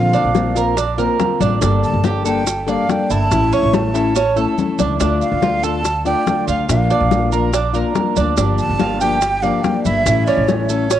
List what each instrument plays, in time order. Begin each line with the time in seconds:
Already playing: upright bass A#1, steel-string acoustic guitar D3 A#3 C4 F4, cuban tres F4, flute F5
0.13 cuban tres D4, high bongo, high conga, maracas
0.24 upright bass A#1
0.34 steel-string acoustic guitar D3 A#3 C4 F4, high bongo, high conga, maracas
0.55 steel-string acoustic guitar A#3 C4 F4, cuban tres A#4, high bongo, high conga, maracas
0.77 cuban tres D4, muted steel-string acoustic guitar stroke, high bongo, high conga, maracas
0.98 steel-string acoustic guitar A#3 C4 F4, cuban tres A#4, high conga, maracas
1.19 steel-string acoustic guitar D3 A#3 C4 F4, high bongo, low bongo, high conga, maracas
1.41 upright bass A1, cuban tres D4, high bongo, high conga, maracas
1.61 upright bass G1, steel-string acoustic guitar D3 G3 A#3 D4 A4, cuban tres D4, high bongo, high conga, maracas
1.83 flute A5, high conga, maracas
1.94 upright bass G1
2.04 steel-string acoustic guitar G3 A#3 D4 A4, cuban tres G4, high bongo, high conga, maracas
2.25 steel-string acoustic guitar G3 A#3 D4 A4, cuban tres A4, flute G5, high conga, maracas
2.46 muted steel-string acoustic guitar stroke, high bongo, high conga, maracas
2.67 steel-string acoustic guitar G3 A#3 D4 A4, cuban tres D5, flute F5, high conga, maracas
2.88 steel-string acoustic guitar G3 A#3 D4 A4, flute G5, high bongo, low bongo, high conga, maracas
3.10 upright bass G1, cuban tres E4, flute A5, maracas
3.31 upright bass A1, steel-string acoustic guitar E3 A3 C#4 E4, high bongo, high conga, maracas
3.52 cuban tres C#4, flute C#6, high bongo, high conga, maracas
3.63 upright bass A1
3.73 steel-string acoustic guitar E3 A3 C#4 E4, flute A5, high bongo, high conga, maracas
3.94 steel-string acoustic guitar A3 C#4 E4, cuban tres A4, high bongo, high conga, maracas
4.16 cuban tres C#4, muted steel-string acoustic guitar stroke, high bongo, high conga, maracas
4.36 steel-string acoustic guitar A3 C#4 E4, cuban tres A4, high conga, maracas
4.57 steel-string acoustic guitar E3 A3 C#4 E4, low bongo, high conga, maracas
4.79 upright bass C#2, cuban tres D4, low bongo, high conga, maracas
5.00 upright bass D2, steel-string acoustic guitar D3 A3 D4 F4, cuban tres D4, high bongo, high conga, maracas
5.21 flute F5, high conga, maracas
5.32 upright bass D2
5.41 steel-string acoustic guitar D3 A3 D4 F4, cuban tres F4, high bongo, high conga, maracas
5.63 steel-string acoustic guitar A3 D4 F4, cuban tres A4, flute A5, high conga, maracas
5.84 muted steel-string acoustic guitar stroke, high bongo, high conga, maracas
6.05 steel-string acoustic guitar A3 D4 F4, cuban tres D5, flute G5, high conga, maracas
6.27 steel-string acoustic guitar D3 A3 D4 F4, high bongo, low bongo, high conga, maracas
6.48 upright bass D2, cuban tres F4, flute F5, maracas
6.69 upright bass A#1, steel-string acoustic guitar F3 A#3 D4 F4, flute F5, high bongo, maracas
6.90 cuban tres D4, high bongo, high conga, maracas
7.00 upright bass A#1
7.11 steel-string acoustic guitar F3 A#3 D4 F4, high bongo, high conga, maracas
7.32 steel-string acoustic guitar A#3 D4 F4, cuban tres A#4, high bongo, high conga, maracas
7.53 cuban tres D4, muted steel-string acoustic guitar stroke, high bongo, high conga, maracas
7.73 steel-string acoustic guitar A#3 D4 F4, cuban tres A#4, high conga, maracas
7.94 steel-string acoustic guitar F3 A#3 D4 F4, high bongo, low bongo, high conga, maracas
8.16 upright bass D2, cuban tres D4, high bongo, high conga, maracas
8.37 upright bass G1, steel-string acoustic guitar D3 F3 A#3 D4 G4, cuban tres D4, high bongo, high conga, maracas
8.58 flute A5, high conga, maracas
8.69 upright bass G1
8.79 steel-string acoustic guitar F3 A#3 D4 G4, cuban tres F4, high bongo, high conga, maracas
9.00 steel-string acoustic guitar F3 A#3 D4 G4, cuban tres G4, flute G5, high conga, maracas
9.21 muted steel-string acoustic guitar stroke, high bongo, high conga, maracas
9.42 steel-string acoustic guitar F3 A#3 D4 G4, cuban tres D5, flute F5, high conga, maracas
9.63 steel-string acoustic guitar F3 A#3 D4 G4, flute G5, high bongo, low bongo, high conga, maracas
9.84 upright bass G1, cuban tres E4, flute E5, high conga, maracas
10.06 upright bass A1, steel-string acoustic guitar E3 A3 C#4 E4, high bongo, maracas
10.26 cuban tres C#4, flute D5, high bongo, high conga, maracas
10.37 upright bass A1
10.48 steel-string acoustic guitar E3 A3 C#4 E4, flute C#5, high bongo, high conga, maracas
10.69 steel-string acoustic guitar A3 C#4 E4, cuban tres A4, high bongo, high conga, maracas
10.89 cuban tres C#4, muted steel-string acoustic guitar stroke, high bongo, high conga, maracas